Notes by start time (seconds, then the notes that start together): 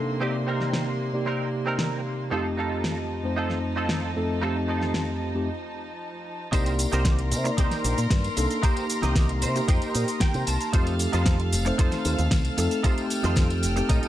Already playing: C3 A#3 D4 D#4 A4 C6
0.20 C3 A#3 C4 D#4 G4 D5
0.47 C4 D#4 A#4
0.61 snare
0.73 snare
1.13 C3 A#3 D#4 G4 D5
1.26 C4 D#4 A#4
1.66 C4 D#4 A#4
1.79 snare
2.31 F2 F3 A3 C4 D#4 F4 G4 A4 A5
2.57 D#4 F4 A4
2.84 snare
3.23 F2 A3 C4 D#4 C5
3.36 D#4 F4 A4
3.50 snare
3.76 D#4 F4 A4
3.89 snare
4.16 F2 A3 C4 D#4 A4
4.42 F2 A3 C4 D#4 F4 G4 A4
4.68 D#4 F4 A4
4.82 snare
4.94 snare
5.34 F2 A3 C4 D#4 G4
6.52 C2 A#3 D#4 G4 A#4 C5 D5 A#5 C6, kick, closed hi-hat, tambourine, cabasa
6.66 closed hi-hat, tambourine
6.79 open hi-hat, tambourine, cabasa
6.92 C2 D#4 G4 A#4 C5, closed hi-hat, tambourine, cabasa
7.05 kick, snare, closed hi-hat, tambourine, cabasa
7.19 closed hi-hat
7.32 C3, open hi-hat, tambourine, cabasa
7.44 A#3 D#4 A#4 D5, muted clean electric guitar stroke, closed hi-hat, tambourine, cabasa
7.57 C2 D#4 G4 A#4 C5, kick, closed hi-hat, tambourine, cabasa
7.71 snare, closed hi-hat, tambourine
7.84 A#1, open hi-hat, tambourine, cabasa
7.98 A#2, closed hi-hat, tambourine, cabasa
8.10 G2, kick, snare, closed hi-hat, tambourine, cabasa
8.24 closed hi-hat, tambourine
8.36 C2 A#3 D4 D#4 A4, muted clean electric guitar stroke, open hi-hat, tambourine, cabasa
8.51 closed hi-hat, tambourine, cabasa
8.62 A#3 D#4 G4 A#4 C5, kick, closed hi-hat, tambourine, cabasa
8.76 closed hi-hat, tambourine
8.90 open hi-hat, tambourine, cabasa
9.02 C2 D#4 G4 A#4 D#5, snare, closed hi-hat, tambourine, cabasa
9.16 kick, snare, closed hi-hat, tambourine, cabasa
9.29 closed hi-hat
9.42 C3 C5, open hi-hat, tambourine, cabasa
9.55 A#3 D#4 G4, muted clean electric guitar stroke, closed hi-hat, tambourine, cabasa
9.68 F2 D#4 G4 A#4 C5 D#5, kick, closed hi-hat, tambourine, cabasa
9.82 closed hi-hat, tambourine
9.95 A#2, open hi-hat, tambourine, cabasa
10.08 open hi-hat, tambourine, cabasa
10.20 G5, kick, snare, closed hi-hat, tambourine, cabasa
10.34 C3, closed hi-hat, tambourine
10.47 C2 A5, muted clean electric guitar stroke, open hi-hat, tambourine, cabasa
10.61 closed hi-hat, tambourine, cabasa
10.73 F2 A3 C4 D#4 F4 G4 A4 C5 F5 F6, kick, closed hi-hat, tambourine, cabasa
10.87 closed hi-hat, tambourine
10.99 open hi-hat, tambourine, cabasa
11.12 F2 D#4 F4 A4 C5, closed hi-hat, tambourine, cabasa
11.26 kick, snare, closed hi-hat, tambourine, cabasa
11.40 closed hi-hat
11.52 F1, open hi-hat, tambourine, cabasa
11.65 A3 C4 D#4 C5, muted clean electric guitar stroke, closed hi-hat, tambourine, cabasa
11.78 F2 D#4 F4 A4 C5, kick, closed hi-hat, tambourine, cabasa
11.91 snare, closed hi-hat, tambourine
12.05 D#2, open hi-hat, tambourine, cabasa
12.18 D#2, closed hi-hat, tambourine, cabasa
12.31 C2, kick, snare, closed hi-hat, tambourine, cabasa
12.45 closed hi-hat, tambourine
12.57 F2 A3 C4 D#4 A4, muted clean electric guitar stroke, open hi-hat, tambourine, cabasa
12.71 closed hi-hat, tambourine, cabasa
12.83 A3 C4 D#4 F4 G4 A4 C5 G5, kick, closed hi-hat, tambourine, cabasa
12.98 closed hi-hat, tambourine
13.10 open hi-hat, tambourine, cabasa
13.23 F2 D#4 F4 A4 C5, snare, closed hi-hat, tambourine, cabasa
13.36 kick, snare, closed hi-hat, tambourine, cabasa
13.50 closed hi-hat, tambourine
13.63 F1, open hi-hat, tambourine, cabasa
13.76 A3 C4 D#4 G4, muted clean electric guitar stroke, closed hi-hat, tambourine, cabasa
13.89 A2 D#4 F4 A4 D#5, kick, closed hi-hat, tambourine, cabasa
14.03 muted fingered electric bass stroke, closed hi-hat, tambourine